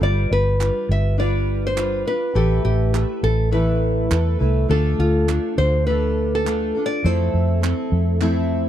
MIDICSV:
0, 0, Header, 1, 5, 480
1, 0, Start_track
1, 0, Tempo, 585366
1, 11, Time_signature, 4, 2, 24, 8
1, 7125, End_track
2, 0, Start_track
2, 0, Title_t, "Nylon-string guitar"
2, 0, Program_c, 0, 24
2, 25, Note_on_c, 0, 74, 93
2, 264, Note_off_c, 0, 74, 0
2, 267, Note_on_c, 0, 71, 95
2, 747, Note_off_c, 0, 71, 0
2, 750, Note_on_c, 0, 76, 92
2, 978, Note_off_c, 0, 76, 0
2, 981, Note_on_c, 0, 74, 79
2, 1363, Note_off_c, 0, 74, 0
2, 1366, Note_on_c, 0, 72, 83
2, 1674, Note_off_c, 0, 72, 0
2, 1701, Note_on_c, 0, 71, 78
2, 1936, Note_on_c, 0, 67, 80
2, 1944, Note_off_c, 0, 71, 0
2, 2160, Note_off_c, 0, 67, 0
2, 2170, Note_on_c, 0, 67, 81
2, 2654, Note_on_c, 0, 69, 83
2, 2666, Note_off_c, 0, 67, 0
2, 2876, Note_off_c, 0, 69, 0
2, 2890, Note_on_c, 0, 71, 69
2, 3579, Note_off_c, 0, 71, 0
2, 3858, Note_on_c, 0, 69, 91
2, 4097, Note_on_c, 0, 65, 80
2, 4103, Note_off_c, 0, 69, 0
2, 4543, Note_off_c, 0, 65, 0
2, 4576, Note_on_c, 0, 72, 91
2, 4798, Note_off_c, 0, 72, 0
2, 4810, Note_on_c, 0, 71, 84
2, 5169, Note_off_c, 0, 71, 0
2, 5207, Note_on_c, 0, 69, 88
2, 5590, Note_off_c, 0, 69, 0
2, 5623, Note_on_c, 0, 74, 96
2, 5786, Note_off_c, 0, 74, 0
2, 5786, Note_on_c, 0, 72, 92
2, 7125, Note_off_c, 0, 72, 0
2, 7125, End_track
3, 0, Start_track
3, 0, Title_t, "Steel-string acoustic guitar"
3, 0, Program_c, 1, 25
3, 6, Note_on_c, 1, 55, 67
3, 11, Note_on_c, 1, 62, 65
3, 15, Note_on_c, 1, 65, 78
3, 21, Note_on_c, 1, 71, 74
3, 473, Note_off_c, 1, 55, 0
3, 481, Note_off_c, 1, 62, 0
3, 483, Note_off_c, 1, 65, 0
3, 483, Note_on_c, 1, 55, 54
3, 491, Note_on_c, 1, 62, 53
3, 493, Note_on_c, 1, 65, 63
3, 500, Note_off_c, 1, 71, 0
3, 503, Note_on_c, 1, 71, 57
3, 954, Note_off_c, 1, 55, 0
3, 958, Note_off_c, 1, 62, 0
3, 962, Note_off_c, 1, 65, 0
3, 964, Note_on_c, 1, 55, 70
3, 968, Note_on_c, 1, 62, 77
3, 972, Note_on_c, 1, 65, 86
3, 974, Note_off_c, 1, 71, 0
3, 977, Note_on_c, 1, 71, 80
3, 1430, Note_off_c, 1, 55, 0
3, 1436, Note_off_c, 1, 62, 0
3, 1440, Note_off_c, 1, 65, 0
3, 1440, Note_on_c, 1, 55, 50
3, 1446, Note_on_c, 1, 62, 61
3, 1450, Note_on_c, 1, 65, 61
3, 1455, Note_off_c, 1, 71, 0
3, 1458, Note_on_c, 1, 71, 60
3, 1676, Note_off_c, 1, 71, 0
3, 1685, Note_on_c, 1, 71, 52
3, 1686, Note_off_c, 1, 55, 0
3, 1687, Note_off_c, 1, 65, 0
3, 1689, Note_off_c, 1, 62, 0
3, 1697, Note_on_c, 1, 65, 48
3, 1705, Note_on_c, 1, 62, 40
3, 1920, Note_on_c, 1, 45, 66
3, 1924, Note_off_c, 1, 71, 0
3, 1925, Note_on_c, 1, 52, 70
3, 1926, Note_off_c, 1, 65, 0
3, 1928, Note_off_c, 1, 62, 0
3, 1928, Note_on_c, 1, 57, 67
3, 1929, Note_on_c, 1, 69, 78
3, 1931, Note_on_c, 1, 64, 78
3, 1933, Note_on_c, 1, 71, 74
3, 2398, Note_off_c, 1, 57, 0
3, 2402, Note_off_c, 1, 64, 0
3, 2402, Note_on_c, 1, 57, 57
3, 2406, Note_off_c, 1, 45, 0
3, 2408, Note_off_c, 1, 52, 0
3, 2411, Note_off_c, 1, 71, 0
3, 2411, Note_on_c, 1, 64, 53
3, 2412, Note_off_c, 1, 69, 0
3, 2415, Note_on_c, 1, 69, 60
3, 2421, Note_on_c, 1, 71, 62
3, 2878, Note_off_c, 1, 64, 0
3, 2879, Note_on_c, 1, 45, 83
3, 2885, Note_off_c, 1, 57, 0
3, 2885, Note_on_c, 1, 52, 73
3, 2886, Note_off_c, 1, 71, 0
3, 2888, Note_on_c, 1, 64, 85
3, 2889, Note_on_c, 1, 57, 78
3, 2890, Note_off_c, 1, 69, 0
3, 2894, Note_on_c, 1, 69, 80
3, 2896, Note_on_c, 1, 71, 77
3, 3360, Note_off_c, 1, 64, 0
3, 3361, Note_off_c, 1, 57, 0
3, 3364, Note_on_c, 1, 57, 62
3, 3366, Note_off_c, 1, 45, 0
3, 3369, Note_off_c, 1, 52, 0
3, 3370, Note_on_c, 1, 64, 61
3, 3372, Note_off_c, 1, 69, 0
3, 3374, Note_off_c, 1, 71, 0
3, 3375, Note_on_c, 1, 69, 62
3, 3383, Note_on_c, 1, 71, 64
3, 3591, Note_off_c, 1, 71, 0
3, 3597, Note_off_c, 1, 69, 0
3, 3600, Note_on_c, 1, 71, 55
3, 3602, Note_off_c, 1, 64, 0
3, 3607, Note_on_c, 1, 69, 55
3, 3608, Note_off_c, 1, 57, 0
3, 3611, Note_on_c, 1, 64, 50
3, 3617, Note_on_c, 1, 57, 50
3, 3839, Note_off_c, 1, 57, 0
3, 3842, Note_on_c, 1, 50, 75
3, 3846, Note_off_c, 1, 64, 0
3, 3847, Note_off_c, 1, 71, 0
3, 3849, Note_on_c, 1, 57, 74
3, 3850, Note_off_c, 1, 69, 0
3, 3850, Note_on_c, 1, 62, 74
3, 3854, Note_on_c, 1, 65, 78
3, 3859, Note_on_c, 1, 69, 83
3, 4320, Note_off_c, 1, 62, 0
3, 4322, Note_off_c, 1, 57, 0
3, 4326, Note_on_c, 1, 57, 57
3, 4328, Note_off_c, 1, 50, 0
3, 4330, Note_on_c, 1, 62, 55
3, 4335, Note_off_c, 1, 65, 0
3, 4338, Note_off_c, 1, 69, 0
3, 4339, Note_on_c, 1, 65, 59
3, 4341, Note_on_c, 1, 69, 58
3, 4557, Note_off_c, 1, 69, 0
3, 4566, Note_off_c, 1, 65, 0
3, 4567, Note_on_c, 1, 69, 45
3, 4570, Note_off_c, 1, 57, 0
3, 4572, Note_off_c, 1, 62, 0
3, 4576, Note_on_c, 1, 65, 49
3, 4585, Note_on_c, 1, 62, 35
3, 4810, Note_off_c, 1, 62, 0
3, 4810, Note_off_c, 1, 69, 0
3, 4813, Note_off_c, 1, 65, 0
3, 4814, Note_on_c, 1, 50, 86
3, 4817, Note_on_c, 1, 57, 72
3, 4820, Note_on_c, 1, 62, 72
3, 4823, Note_on_c, 1, 65, 80
3, 4828, Note_on_c, 1, 69, 83
3, 5287, Note_off_c, 1, 62, 0
3, 5288, Note_off_c, 1, 57, 0
3, 5292, Note_on_c, 1, 57, 60
3, 5294, Note_off_c, 1, 50, 0
3, 5297, Note_on_c, 1, 62, 66
3, 5301, Note_off_c, 1, 65, 0
3, 5304, Note_on_c, 1, 65, 59
3, 5308, Note_off_c, 1, 69, 0
3, 5311, Note_on_c, 1, 69, 62
3, 5523, Note_off_c, 1, 69, 0
3, 5533, Note_off_c, 1, 57, 0
3, 5533, Note_on_c, 1, 69, 50
3, 5534, Note_off_c, 1, 65, 0
3, 5535, Note_off_c, 1, 62, 0
3, 5544, Note_on_c, 1, 65, 49
3, 5553, Note_on_c, 1, 62, 43
3, 5773, Note_off_c, 1, 69, 0
3, 5773, Note_on_c, 1, 53, 75
3, 5774, Note_off_c, 1, 62, 0
3, 5776, Note_on_c, 1, 57, 76
3, 5777, Note_on_c, 1, 60, 82
3, 5779, Note_off_c, 1, 65, 0
3, 5782, Note_on_c, 1, 64, 84
3, 5785, Note_on_c, 1, 69, 78
3, 6234, Note_off_c, 1, 57, 0
3, 6243, Note_on_c, 1, 57, 60
3, 6249, Note_off_c, 1, 60, 0
3, 6252, Note_on_c, 1, 60, 58
3, 6253, Note_off_c, 1, 69, 0
3, 6254, Note_off_c, 1, 53, 0
3, 6254, Note_off_c, 1, 64, 0
3, 6258, Note_on_c, 1, 64, 57
3, 6263, Note_on_c, 1, 69, 68
3, 6724, Note_off_c, 1, 57, 0
3, 6728, Note_on_c, 1, 53, 77
3, 6729, Note_off_c, 1, 60, 0
3, 6731, Note_off_c, 1, 69, 0
3, 6732, Note_on_c, 1, 60, 86
3, 6733, Note_on_c, 1, 57, 90
3, 6735, Note_off_c, 1, 64, 0
3, 6738, Note_on_c, 1, 64, 85
3, 6741, Note_on_c, 1, 69, 91
3, 7125, Note_off_c, 1, 53, 0
3, 7125, Note_off_c, 1, 57, 0
3, 7125, Note_off_c, 1, 60, 0
3, 7125, Note_off_c, 1, 64, 0
3, 7125, Note_off_c, 1, 69, 0
3, 7125, End_track
4, 0, Start_track
4, 0, Title_t, "Fingered electric bass"
4, 0, Program_c, 2, 33
4, 11, Note_on_c, 2, 31, 92
4, 208, Note_off_c, 2, 31, 0
4, 256, Note_on_c, 2, 31, 95
4, 569, Note_off_c, 2, 31, 0
4, 730, Note_on_c, 2, 31, 90
4, 1658, Note_off_c, 2, 31, 0
4, 1929, Note_on_c, 2, 33, 93
4, 2127, Note_off_c, 2, 33, 0
4, 2172, Note_on_c, 2, 33, 92
4, 2487, Note_off_c, 2, 33, 0
4, 2649, Note_on_c, 2, 33, 86
4, 3338, Note_off_c, 2, 33, 0
4, 3370, Note_on_c, 2, 40, 87
4, 3568, Note_off_c, 2, 40, 0
4, 3614, Note_on_c, 2, 36, 85
4, 3810, Note_off_c, 2, 36, 0
4, 3850, Note_on_c, 2, 38, 96
4, 4048, Note_off_c, 2, 38, 0
4, 4091, Note_on_c, 2, 38, 94
4, 4407, Note_off_c, 2, 38, 0
4, 4573, Note_on_c, 2, 38, 89
4, 5501, Note_off_c, 2, 38, 0
4, 5776, Note_on_c, 2, 41, 103
4, 5972, Note_off_c, 2, 41, 0
4, 6017, Note_on_c, 2, 41, 93
4, 6330, Note_off_c, 2, 41, 0
4, 6493, Note_on_c, 2, 41, 91
4, 7125, Note_off_c, 2, 41, 0
4, 7125, End_track
5, 0, Start_track
5, 0, Title_t, "Drums"
5, 499, Note_on_c, 9, 39, 74
5, 581, Note_off_c, 9, 39, 0
5, 1456, Note_on_c, 9, 39, 78
5, 1538, Note_off_c, 9, 39, 0
5, 2417, Note_on_c, 9, 39, 81
5, 2499, Note_off_c, 9, 39, 0
5, 3375, Note_on_c, 9, 39, 88
5, 3457, Note_off_c, 9, 39, 0
5, 4337, Note_on_c, 9, 39, 78
5, 4419, Note_off_c, 9, 39, 0
5, 5306, Note_on_c, 9, 39, 79
5, 5388, Note_off_c, 9, 39, 0
5, 6265, Note_on_c, 9, 39, 82
5, 6347, Note_off_c, 9, 39, 0
5, 6735, Note_on_c, 9, 39, 67
5, 6817, Note_off_c, 9, 39, 0
5, 7125, End_track
0, 0, End_of_file